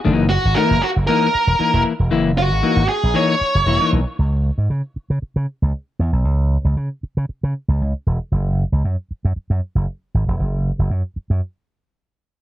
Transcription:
<<
  \new Staff \with { instrumentName = "Lead electric guitar" } { \time 4/4 \key fis \mixolydian \tempo 4 = 116 r8 fis'8 ais'8 fis'8 ais'4. r8 | r8 fis'4 gis'8 cis''4. r8 | r1 | r1 |
r1 | r1 | }
  \new Staff \with { instrumentName = "Clean electric guitar" } { \time 4/4 \key fis \mixolydian <e ais dis'>8 r8 <e ais e'>8 r8 <e ais dis'>16 r8. <e ais dis'>16 <e ais e'>16 r8 | <e ais e'>16 r8. <e ais dis'>16 r8. <e ais dis'>16 r8. <e ais e'>16 <e ais dis'>16 r8 | r1 | r1 |
r1 | r1 | }
  \new Staff \with { instrumentName = "Slap bass" } { \clef bass \time 4/4 \key fis \mixolydian fis,,8. gis,,16 r16 fis,,16 r16 fis,,16 r8. e,,16 r16 e,,16 r16 e,,16 | fis,,8. gis,,16 r16 gis,,16 r16 ais,,16 r8. fis,,16 e,,16 r16 b,,16 r16 | cis,8. gis,16 cis16 r8 cis16 r16 cis16 r16 cis,16 r8 e,16 b,,16 | cis,8. cis,16 cis16 r8 cis16 r16 cis16 r16 cis,16 cis,16 r16 e,,16 r16 |
fis,,8. cis,16 fis,16 r8 fis,16 r16 fis,16 r16 fis,,16 r8 gis,,16 e,,16 | fis,,8. fis,,16 fis,16 r8 fis,16 r2 | }
>>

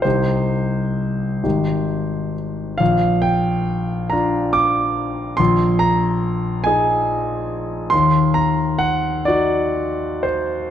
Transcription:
\new Staff \with { instrumentName = "Grand piano" } { \time 6/8 \key aes \lydian \tempo 4. = 45 << { c''2~ c''8 r8 | f''8 g''4 bes''8 d'''4 | c'''8 bes''4 aes''4. | c'''8 bes''8 ges''8 d''4 c''8 | } \\ { <c, ees' g'>4. <aes,, ees' g'>4. | bes,,4. <d' f'>4. | bes,,4. <ees' aes'>4. | ees,4. <ees' ges'>4. | } >> }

